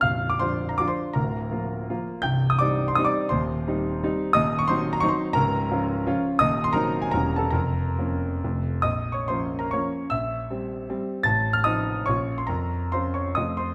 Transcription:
<<
  \new Staff \with { instrumentName = "Grand piano" } { \time 3/4 \key bes \major \tempo 4 = 159 <f'' f'''>8. d'''16 <c'' c'''>8. bes''16 d'''16 <c'' c'''>8. | <bes' bes''>2~ <bes' bes''>8 r8 | <g'' g'''>8. ees'''16 <d'' d'''>8. c'''16 ees'''16 <d'' d'''>8. | <c'' c'''>2~ <c'' c'''>8 r8 |
\key bes \minor <ees'' ees'''>8. des'''16 <c'' c'''>8. bes''16 des'''16 <c'' c'''>8. | <bes' bes''>2~ <bes' bes''>8 r8 | <ees'' ees'''>8. c'''16 <bes' bes''>8. aes''16 \tuplet 3/2 { <bes' bes''>4 <a' a''>8 } | <bes' bes''>2 r4 |
\tuplet 3/2 { <ees'' ees'''>4 <des'' des'''>8 <c'' c'''>4 <bes' bes''>8 } <des'' des'''>4 | <e'' e'''>2~ <e'' e'''>8 r8 | <a'' a'''>8. f'''16 <ees'' ees'''>4 <des'' des'''>8. c'''16 | <bes' bes''>4 <c'' c'''>8 <des'' des'''>8 <ees'' ees'''>8 <c'' c'''>8 | }
  \new Staff \with { instrumentName = "Grand piano" } { \clef bass \time 3/4 \key bes \major <bes,,, bes,,>4 <f d' f'>4 <f d' f'>4 | <d,, d,>4 <f bes f'>4 <f bes f'>4 | <c,, c,>4 <g c' ees'>4 <g c' ees'>4 | <ees,, ees,>4 <g c' ees'>4 <g c' ees'>4 |
\key bes \minor <ees,, ees,>4 <ges c' ees'>4 <ges c' ees'>4 | <des,, des,>4 <f des' f'>4 <f des' f'>4 | <ees,, ees,>4 <ges c' ees'>4 <e,, e, g bes cis'>4 | <f,, f,>4 <f bes des'>4 <f,, f, f a c'>4 |
bes,,4 <f bes des'>4 <f bes des'>4 | bes,,4 <g c'>4 <g c'>4 | a,,4 <f c' ees'>4 <bes,, f des' f'>4 | f,4 <f des' f'>4 <f, a c' f'>4 | }
>>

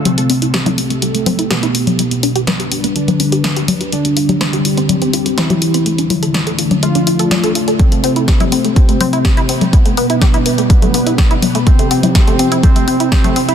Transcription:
<<
  \new Staff \with { instrumentName = "Analog synth pad" } { \time 4/4 \key a \minor \tempo 4 = 124 <a g' a'>1 | <g d' b'>1 | <g c' g'>1 | <d a d'>1 |
<g' c''>1 | <g d' b'>1 | <f c' g'>1 | }
  \new Staff \with { instrumentName = "Synth arpeggio sound" } { \time 4/4 \key a \minor g16 a16 c'16 e'16 g'16 e'16 c'16 a16 g16 a16 c'16 e'16 g'16 e'16 c'16 a16 | g16 b16 d'16 g'16 b'16 g'16 d'16 b16 g16 b16 d'16 g'16 b'16 g'16 d'16 g'16 | g16 c'16 f'16 g'16 c''16 g'16 f'16 c'16 g16 c'16 f'16 g'16 c''16 g'16 f'16 c'16 | a16 d'16 f'16 a'16 d''16 a'16 f'16 d'16 a16 d'16 f'16 a'16 d''16 a'16 f'16 a'16 |
g16 a16 c'16 e'16 g'16 e'16 c'16 a16 g16 a16 c'16 e'16 g'16 e'16 c'16 a16 | g16 a16 b16 e'16 g'16 e'16 b16 a16 g16 a16 b16 e'16 g'16 e'16 b16 a16 | g16 a16 c'16 e'16 g16 a16 c'16 e'16 g16 a16 c'16 e'16 g16 a16 c'16 e'16 | }
  \new Staff \with { instrumentName = "Analog polysynth" } { \clef bass \time 4/4 \key a \minor <c c'>2. <b, b>4~ | <b, b>2 <d d'>2 | <d d'>2. <e e'>4~ | <e e'>2 <f f'>2 |
<c c'>2 <c c'>2 | <b, b>2 <b, b>2 | <c c'>4 <c c'>4 <c c'>4 <c c'>4 | }
  \new DrumStaff \with { instrumentName = "Drums" } \drummode { \time 4/4 <cgl hh>16 hh16 hho16 hh16 <hh sn>16 <cgl hh>16 hho16 hh16 hh16 hh16 <cgl hho>16 hh16 <hh sn>16 hh16 hho16 <cgl hh>16 | hh16 hh16 hho16 hh16 <cgl hh sn>16 hh16 hho16 hh16 hh16 <cgl hh>16 hho16 hh16 <hh sn>16 hh16 <cgl hho>16 hh16 | hh16 hh16 hho16 <cgl hh>16 <hh sn>16 hh16 hho16 hh16 <cgl hh>16 hh16 hho16 hh16 <hh sn>16 <cgl hh>16 hho16 hh16 | hh16 hh16 <cgl hho>16 hh16 <hh sn>16 hh16 hho16 <cgl hh>16 hh16 hh16 hho16 hh16 <cgl hh sn>16 hh16 hho16 hh16 |
<cgl hh bd>16 hh16 hho16 hh16 <hh bd sn>16 <cgl hh>16 hho16 hh16 <hh bd>16 hh16 <cgl hho>16 hh16 <hh bd sn>16 hh16 hho16 <cgl hh>16 | <hh bd>16 hh16 hho16 hh16 <cgl hh bd sn>16 hh16 hho16 hh16 <hh bd>16 <cgl hh>16 hho16 hh16 <hh bd sn>16 hh16 <cgl hho>16 hh16 | <hh bd>16 hh16 hho16 <cgl hh>16 <hh bd sn>16 hh16 hho16 hh16 <cgl hh bd>16 hh16 hho16 hh16 <hh bd sn>16 <cgl hh>16 hho16 hh16 | }
>>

